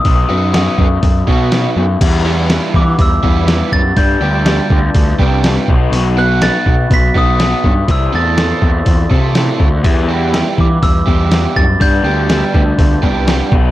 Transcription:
Already playing: glockenspiel D#6
0.05 picked electric bass B1, overdriven electric guitar F#3 B3 D#4, kick, open hi-hat
0.29 picked electric bass F#2, overdriven electric guitar F#3 B3 D#4 F#4
0.54 overdriven electric guitar F#3 B3 D#4 F#4, snare, open hi-hat
0.78 picked electric bass F#2, overdriven electric guitar F#3 B3, kick
1.02 picked electric bass F#2, overdriven electric guitar F#3 B3, kick, open hi-hat
1.27 picked electric bass B2, overdriven electric guitar F#3 B3 D#4 F#4, kick
1.52 overdriven electric guitar F#3 B3 D#4 F#4, snare, open hi-hat
1.76 picked electric bass F#2, overdriven electric guitar F#3 B3
2.00 picked electric bass E2, overdriven electric guitar G3 B3 E4, analog synth pad G4 B4 E5 B5, kick, open hi-hat, crash
2.25 overdriven electric guitar E3 G3 B3 E4
2.50 overdriven electric guitar E3 G3 B3 E4, snare, open hi-hat
2.74 picked electric bass E3, overdriven electric guitar G3 B3, glockenspiel D6, kick
2.99 picked electric bass E2, overdriven electric guitar G3 B3, glockenspiel E6, kick, open hi-hat
3.23 picked electric bass E2, overdriven electric guitar E3 G3 B3 E4, kick
3.48 overdriven electric guitar E3 G3 B3 E4, snare, open hi-hat
3.72 picked electric bass F#2, overdriven electric guitar G3 B3, glockenspiel A6, kick
3.96 picked electric bass G2, overdriven electric guitar G3 B3 D4, analog synth pad B4 D5 A5, glockenspiel G6, kick, open hi-hat
4.21 picked electric bass D2, overdriven electric guitar G3 B3 D4 G4
4.46 overdriven electric guitar G3 B3 D4 G4, snare, open hi-hat
4.70 picked electric bass D2, overdriven electric guitar G3 B3, kick
4.95 picked electric bass D2, overdriven electric guitar G3 B3, kick, open hi-hat
5.19 picked electric bass C2, overdriven electric guitar G3 B3 D4 G4, kick
5.44 overdriven electric guitar G3 B3 D4 G4, snare, open hi-hat
5.68 picked electric bass B1, overdriven electric guitar F#3 B3 D#4, analog synth pad F#4 D#5 B5, kick
5.92 picked electric bass B1, overdriven electric guitar F#3 B3 D#4, open hi-hat
6.17 overdriven electric guitar F#3 B3 D#4 F#4, glockenspiel F#6
6.42 overdriven electric guitar F#3 B3 D#4 F#4, glockenspiel A6, snare, open hi-hat
6.66 picked electric bass B2, overdriven electric guitar F#3 B3, kick
6.91 picked electric bass B1, overdriven electric guitar F#3 B3, glockenspiel B6, kick, open hi-hat
7.15 picked electric bass B1, overdriven electric guitar F#3 B3 D#4 F#4, glockenspiel D#6, kick
7.39 overdriven electric guitar F#3 B3 D#4 F#4, snare, open hi-hat
7.64 picked electric bass G2, overdriven electric guitar F#3 B3, kick
7.87 picked electric bass C2, overdriven electric guitar E3 C4 E4, analog synth pad A4 C5 E5 C6, glockenspiel E6, kick, open hi-hat
8.12 picked electric bass E2, overdriven electric guitar E3 A3 C4 E4 A4, glockenspiel A6
8.37 overdriven electric guitar E3 A3 C4 E4 A4, snare, open hi-hat
8.62 picked electric bass E2, overdriven electric guitar E3 C4, kick
8.85 picked electric bass E2, overdriven electric guitar E3 C4, kick, open hi-hat
9.10 picked electric bass C3, overdriven electric guitar E3 A3 C4 E4 A4, kick
9.35 overdriven electric guitar E3 A3 C4 E4 A4, snare, open hi-hat
9.59 picked electric bass D2, overdriven electric guitar E3 C4, kick
9.83 picked electric bass E2, overdriven electric guitar G3 B3 E4, analog synth pad G4 B4 B5, kick, open hi-hat
10.08 overdriven electric guitar E3 G3 B3 E4 G4
10.33 overdriven electric guitar E3 G3 B3 E4 G4, snare, open hi-hat
10.58 picked electric bass E3, overdriven electric guitar G3 B3, glockenspiel D6, kick
10.82 picked electric bass E2, overdriven electric guitar G3 B3, glockenspiel E6, kick, open hi-hat
11.06 picked electric bass E2, overdriven electric guitar E3 G3 B3 E4 G4, kick
11.30 overdriven electric guitar E3 G3 B3 E4 G4, snare, open hi-hat
11.56 picked electric bass F#2, overdriven electric guitar G3 B3, glockenspiel A6, kick
11.80 picked electric bass G2, overdriven electric guitar G3 B3 D4, analog synth pad B4 D5 A5, glockenspiel G6, kick, open hi-hat
12.04 picked electric bass D2, overdriven electric guitar G3 B3 D4 G4
12.29 overdriven electric guitar G3 B3 D4 G4, snare, open hi-hat
12.54 picked electric bass D2, overdriven electric guitar G3 B3, kick
12.78 picked electric bass D2, overdriven electric guitar G3 B3, kick, open hi-hat
13.02 picked electric bass C2, overdriven electric guitar G3 B3 D4 G4, kick
13.27 overdriven electric guitar G3 B3 D4 G4, snare, open hi-hat
13.50 picked electric bass B1, overdriven electric guitar F#3 B3 D#4, analog synth pad F#4 D#5 B5, kick

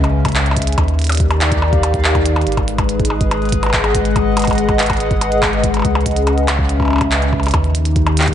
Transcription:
Already playing: sub bass C#2, analog synth pad C#3 C#4 B4 D#5 E5
0.04 closed hi-hat, percussion blips
0.25 kick, closed hi-hat, percussion blips
0.29 closed hi-hat
0.32 clap, closed hi-hat
0.35 closed hi-hat
0.46 closed hi-hat
0.51 percussion blips
0.57 kick, closed hi-hat
0.62 closed hi-hat
0.67 closed hi-hat
0.73 closed hi-hat
0.78 sub bass D#2, analog synth pad D#3, kick, closed hi-hat, percussion blips
0.88 closed hi-hat
0.98 analog synth pad G4, closed hi-hat
1.02 analog synth pad D#4 D5, closed hi-hat
1.04 closed hi-hat
1.07 closed hi-hat
1.09 closed hi-hat, percussion blips
1.12 closed hi-hat
1.15 closed hi-hat
1.17 kick, closed hi-hat
1.20 closed hi-hat
1.31 closed hi-hat, percussion blips
1.41 clap, closed hi-hat
1.46 analog synth pad F5
1.52 kick, closed hi-hat
1.62 percussion blips
1.73 kick, closed hi-hat
1.83 closed hi-hat, percussion blips
1.94 kick, closed hi-hat
2.04 clap
2.15 kick, closed hi-hat, percussion blips
2.26 closed hi-hat
2.36 closed hi-hat, percussion blips
2.41 closed hi-hat
2.47 sub bass G#1, analog synth pad G#3, closed hi-hat
2.52 analog synth pad B4, closed hi-hat
2.57 analog synth pad G#4, kick, closed hi-hat, percussion blips
2.68 closed hi-hat
2.78 kick, closed hi-hat, percussion blips
2.83 analog synth pad D#5
2.89 closed hi-hat
3.00 kick, closed hi-hat
3.05 closed hi-hat
3.10 percussion blips
3.21 kick, closed hi-hat
3.31 closed hi-hat, percussion blips
3.36 analog synth pad F#5
3.42 closed hi-hat
3.45 closed hi-hat
3.49 closed hi-hat
3.52 kick, closed hi-hat
3.63 closed hi-hat, percussion blips
3.66 percussion blips
3.70 kick, clap, closed hi-hat, percussion blips
3.84 closed hi-hat, percussion blips
3.95 kick, closed hi-hat
4.05 closed hi-hat
4.16 kick, closed hi-hat, percussion blips
4.37 closed hi-hat, percussion blips
4.39 closed hi-hat
4.42 closed hi-hat, percussion blips
4.45 closed hi-hat
4.47 kick, closed hi-hat
4.50 closed hi-hat, percussion blips
4.53 closed hi-hat
4.55 closed hi-hat
4.58 closed hi-hat
4.69 kick, closed hi-hat, percussion blips
4.79 clap, closed hi-hat
4.83 closed hi-hat
4.86 closed hi-hat
4.90 kick, closed hi-hat, percussion blips
4.93 closed hi-hat
4.97 closed hi-hat
5.00 closed hi-hat
5.11 kick, closed hi-hat
5.21 closed hi-hat, percussion blips
5.32 closed hi-hat
5.43 kick, clap, closed hi-hat, percussion blips
5.53 closed hi-hat
5.64 kick, closed hi-hat
5.74 closed hi-hat, percussion blips
5.77 percussion blips
5.79 percussion blips
5.82 sub bass C#2, analog synth pad C#3, kick, closed hi-hat, percussion blips
5.89 analog synth pad C#4
5.95 closed hi-hat, percussion blips
6.01 closed hi-hat
6.06 kick, closed hi-hat
6.11 closed hi-hat
6.16 closed hi-hat
6.27 closed hi-hat, percussion blips
6.38 closed hi-hat
6.48 clap, closed hi-hat, percussion blips
6.59 analog synth pad E5, kick
6.69 closed hi-hat
6.80 kick, percussion blips
6.82 percussion blips
6.85 percussion blips
6.88 percussion blips
6.90 percussion blips
6.93 percussion blips
6.96 percussion blips
6.98 closed hi-hat, percussion blips
7.01 kick, percussion blips
7.12 clap, closed hi-hat
7.22 closed hi-hat
7.33 kick, percussion blips
7.40 closed hi-hat, percussion blips
7.46 closed hi-hat, percussion blips
7.48 closed hi-hat
7.51 analog synth pad D#3, closed hi-hat
7.54 sub bass D#2, kick, closed hi-hat, percussion blips
7.64 closed hi-hat
7.68 analog synth pad D#4
7.73 analog synth pad G4, closed hi-hat
7.85 closed hi-hat
7.96 kick, closed hi-hat
8.07 analog synth pad D5 F5, closed hi-hat, percussion blips
8.17 clap, closed hi-hat
8.22 clap, closed hi-hat
8.25 kick, clap, closed hi-hat

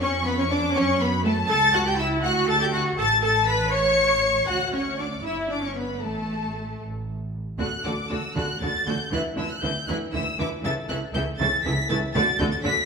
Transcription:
0.01 double bass section F2, viola section C#4, cello section C#4, violin section C#5 C#6
0.26 viola section B3, cello section B3, violin section B4 B5
0.38 viola section C#4, cello section C#4, violin section C#5 C#6
0.50 viola section D4, cello section D4, violin section D5 D6
0.75 double bass section F#2, viola section C#4, cello section C#4, violin section C#5 C#6
1.00 viola section B3, cello section B3, violin section B4 B5
1.25 cello section A3, viola section A3, violin section A4 A5
1.50 double bass section C#2, cello section A4, viola section A4, violin section A5 A6
1.74 viola section F#4, cello section F#4, violin section F#5 F#6
1.86 viola section G4, cello section G4, violin section G5 G6
1.98 viola section E4, cello section E4, violin section E5 E6
2.22 double bass section D2, viola section F#4, cello section F#4, violin section F#5 F#6
2.47 viola section A4, cello section A4, violin section A5 A6
2.60 viola section G4, cello section G4, violin section G5 G6
2.72 viola section F#4, cello section F#4, violin section F#5 F#6
2.98 double bass section A1, cello section A4, viola section A4, violin section A5 A6
3.23 viola section A4, cello section A4, violin section A5 A6
3.47 viola section B4, cello section B4, violin section B5 B6
3.72 cello section C#5, viola section C#5, violin section C#6 C#7
4.47 double bass section D2, cello section F#4, viola section F#4, violin section F#5 F#6
4.72 cello section C#4, viola section C#4, violin section C#5 C#6
4.98 cello section D4, viola section D4, violin section D5 D6
5.23 double bass section G1, cello section E4, viola section E4, violin section E5 E6
5.49 cello section D4, viola section D4, violin section D5 D6
5.62 cello section C#4, viola section C#4, violin section C#5 C#6
5.76 cello section B3, viola section B3, violin section B4 B5
6.02 double bass section A1, viola section A3, cello section A3, violin section A4 A5
6.81 double bass section A1
7.59 double bass section D2, cello section D3, viola section A3 F#4, violin section A4 D5 F#6
7.85 double bass section D2, cello section D3, viola section A3 F#4, violin section A4 D5 D6
8.10 double bass section D2, cello section D3, viola section A3 F#4, violin section A4 D5 E6
8.36 double bass section D2, cello section D3, viola section A3 F#4, violin section A4 D5 F#6
8.61 double bass section D2, cello section D3, viola section A3 F#4, violin section A4 D5 A6
8.87 double bass section D2, cello section D3, viola section A3 F#4, violin section A4 D5 G6
9.12 double bass section D2, cello section D3, viola section E3 E4, violin section B4 E5 F#6
9.37 double bass section D2, cello section D3, viola section E3 E4, violin section B4 E5 E6
9.51 violin section F#6
9.62 double bass section D2, cello section D3, viola section E3 E4, violin section B4 E5 G6
9.87 double bass section D2, cello section D3, viola section E3 E4, violin section B4 E5 F#6
10.13 double bass section D2, cello section D3, viola section E3 E4, violin section B4 E5 E6
10.39 double bass section D2, cello section D3, viola section E3 E4, violin section B4 E5 D6
10.63 double bass section C#2, cello section C#3, viola section E3 E4, violin section A4 E5 A6
10.89 double bass section C#2, cello section C#3, viola section E3 E4, violin section A4 E5 F#6
11.14 double bass section C#2, cello section C#3, viola section E3 E4, violin section A4 E5 G6
11.39 double bass section C#2, cello section C#3, viola section E3 E4, violin section A4 E5 A6
11.65 double bass section C#2, cello section C#3, viola section E3 E4, violin section A4 E5 B6
11.89 double bass section C#2, cello section C#3, viola section E3 E4, violin section A4 E5 A6
12.14 double bass section D2, cello section D3, viola section A3 F#4, violin section A4 D5 A6
12.39 double bass section D2, cello section D3, viola section A3 F#4, violin section A4 D5 G6
12.52 violin section A6
12.63 double bass section D2, cello section D3, viola section A3 F#4, violin section A4 D5 B6

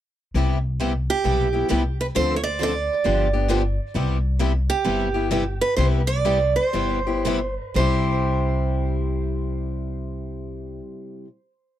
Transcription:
0.34 upright bass C2, steel-string acoustic guitar C3 G3 B3 E4 G4
0.80 steel-string acoustic guitar C3 G3 B3 E4 G4
1.10 steel-string acoustic guitar G4
1.24 upright bass B1, steel-string acoustic guitar C3 G3 B3 E4 G4
1.53 steel-string acoustic guitar B3 E4 G4
1.70 upright bass C2, steel-string acoustic guitar C3 G3 B3 E4 G4
2.01 steel-string acoustic guitar B4
2.15 upright bass D2, steel-string acoustic guitar D3 F3 C4 D4 A4 C5
2.36 steel-string acoustic guitar C#5
2.44 steel-string acoustic guitar D5
2.61 steel-string acoustic guitar D3 F3 C4 D4 A4 D5
3.05 upright bass G1, steel-string acoustic guitar D3 F3 B3 D4 G4
3.33 steel-string acoustic guitar B3 D4 G4
3.48 steel-string acoustic guitar D3 F3 B3 D4 G4
3.95 upright bass C2, steel-string acoustic guitar C3 G3 B3 E4 G4
4.40 steel-string acoustic guitar C3 G3 B3 E4 G4
4.70 steel-string acoustic guitar G4
4.85 upright bass G1, steel-string acoustic guitar C3 G3 B3 E4 G4
5.14 steel-string acoustic guitar B3 E4 G4
5.31 steel-string acoustic guitar C3 G3 B3 E4 G4
5.61 steel-string acoustic guitar B4
5.77 upright bass C2, steel-string acoustic guitar C3 G3 B3 E4 G4 C5
6.07 steel-string acoustic guitar D5
6.25 steel-string acoustic guitar C3 G3 B3 E4 G4
6.56 steel-string acoustic guitar C5
6.73 upright bass G1, steel-string acoustic guitar C3 G3 B3 E4 G4
7.07 steel-string acoustic guitar B3 E4 G4
7.26 steel-string acoustic guitar C3 G3 B3 E4 G4
7.76 upright bass C2, steel-string acoustic guitar C3 G3 E4 G4 C5

